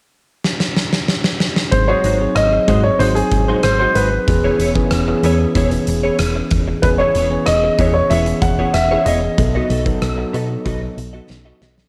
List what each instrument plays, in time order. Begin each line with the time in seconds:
0.44 snare
0.60 snare
0.76 snare
0.93 snare
1.08 snare
1.24 snare
1.40 snare
1.56 snare
1.71 fm bass G#1, tine electric piano F#3 C4 D#4 G#4, grand piano C5, muted clean electric guitar stroke, kick, closed hi-hat
1.88 clean electric guitar G#3 D#4 F#4 C5, grand piano C#5
2.04 fm bass G#1, clean electric guitar G#3 D#4 F#4 C5, closed hi-hat
2.20 tine electric piano F#3 C4 D#4 G#4, muted clean electric guitar stroke
2.35 fm bass G#1, grand piano D#5, cross-stick, closed hi-hat
2.53 muted clean electric guitar stroke
2.68 fm bass G#2, clean electric guitar G#3 D#4 F#4 C5, kick, closed hi-hat
2.83 grand piano C#5, muted clean electric guitar stroke
2.99 fm bass G#1, tine electric piano F#3 C4 D#4 G#4, clean electric guitar G#3 D#4 F#4 C5, grand piano C5, closed hi-hat
3.15 grand piano G#4, muted clean electric guitar stroke, closed hi-hat
3.31 fm bass G#1, muted clean electric guitar stroke, kick, closed hi-hat
3.48 clean electric guitar G#3 D#4 F#4 C5
3.63 fm bass G#1, grand piano C5, cross-stick, closed hi-hat
3.79 clean electric guitar G#3 D#4 F#4 C5, grand piano C5
3.95 fm bass G#1, clean electric guitar G#3 D#4 F#4 C5, grand piano B4, closed hi-hat
4.13 muted clean electric guitar stroke
4.27 fm bass E1, tine electric piano E3 B3 C#4 G#4, muted clean electric guitar stroke, kick, closed hi-hat
4.44 clean electric guitar B3 E4 G#4 C#5
4.59 fm bass E1, clean electric guitar B3 E4 G#4 C#5, closed hi-hat
4.75 tine electric piano E3 B3 C#4 G#4, kick
4.91 fm bass E1, cross-stick, closed hi-hat
5.07 tine electric piano E3 B3 C#4 G#4, muted clean electric guitar stroke
5.23 fm bass E2, clean electric guitar B3 E4 G#4 C#5, closed hi-hat
5.40 muted clean electric guitar stroke
5.55 fm bass E1, clean electric guitar B3 E4 G#4 C#5, kick, closed hi-hat
5.71 muted clean electric guitar stroke, closed hi-hat
5.87 fm bass E1, muted clean electric guitar stroke, closed hi-hat
6.03 clean electric guitar B3 E4 G#4 C#5
6.19 fm bass E1, muted clean electric guitar stroke, cross-stick, closed hi-hat
6.35 muted clean electric guitar stroke
6.51 fm bass E1, kick, closed hi-hat
6.68 muted clean electric guitar stroke
6.82 fm bass E1, tine electric piano E3 B3 C#4 G#4, grand piano B4, muted clean electric guitar stroke, kick, closed hi-hat
6.98 clean electric guitar B3 E4 G#4 C#5, grand piano C#5
7.15 fm bass E1, clean electric guitar B3 E4 G#4 C#5, closed hi-hat
7.30 tine electric piano E3 B3 C#4 G#4, muted clean electric guitar stroke
7.46 fm bass E1, grand piano D#5, cross-stick, closed hi-hat
7.64 muted clean electric guitar stroke
7.79 fm bass E2, clean electric guitar B3 E4 G#4 C#5, kick, closed hi-hat
7.94 grand piano C#5, muted clean electric guitar stroke
8.10 fm bass E1, tine electric piano E3 B3 C#4 G#4, clean electric guitar B3 E4 G#4 C#5, grand piano E5, closed hi-hat
8.26 muted clean electric guitar stroke, closed hi-hat
8.42 fm bass E1, grand piano F#5, muted clean electric guitar stroke, kick, closed hi-hat
8.59 clean electric guitar B3 E4 G#4 C#5
8.74 fm bass E1, grand piano E5, muted clean electric guitar stroke, cross-stick, closed hi-hat
8.91 clean electric guitar B3 E4 G#4 C#5
9.06 fm bass E1, clean electric guitar B3 E4 G#4 C#5, grand piano D#5, closed hi-hat
9.23 muted clean electric guitar stroke
9.37 fm bass B1, tine electric piano F#3 B3 D#4 A4, muted clean electric guitar stroke, kick, closed hi-hat
9.55 clean electric guitar B3 F#4 A4 D#5
9.70 fm bass B1, clean electric guitar B3 F#4 A4 D#5, closed hi-hat
9.85 tine electric piano F#3 B3 D#4 A4, kick, closed hi-hat
10.02 fm bass B1, cross-stick, closed hi-hat
10.17 tine electric piano F#3 B3 D#4 A4, muted clean electric guitar stroke
10.33 fm bass B2, clean electric guitar B3 F#4 A4 D#5, closed hi-hat
10.50 muted clean electric guitar stroke
10.65 fm bass B1, clean electric guitar B3 F#4 A4 D#5, kick, closed hi-hat
10.82 muted clean electric guitar stroke
10.97 fm bass B1, muted clean electric guitar stroke, closed hi-hat
11.13 clean electric guitar B3 F#4 A4 D#5
11.29 fm bass B1, muted clean electric guitar stroke, snare
11.45 clean electric guitar B3 F#4 A4 D#5
11.61 fm bass B1, clean electric guitar B3 F#4 A4 D#5, snare
11.78 snare